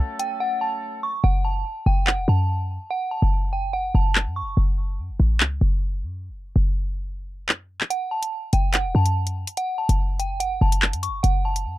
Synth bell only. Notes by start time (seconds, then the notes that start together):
Already playing: A5
0.19 G5
0.40 F#5
0.61 A5
1.03 C#6
1.24 F#5
1.45 A5
1.86 G5
2.07 F#5
2.29 A5
2.91 F#5
3.11 A5
3.53 G5
3.73 F#5
3.95 A5
4.36 C#6
7.90 F#5
8.11 A5
8.53 G5
8.74 F#5
8.96 A5
9.57 F#5
9.78 A5
10.19 G5
10.40 F#5
10.62 A5
11.03 C#6
11.23 F#5
11.45 A5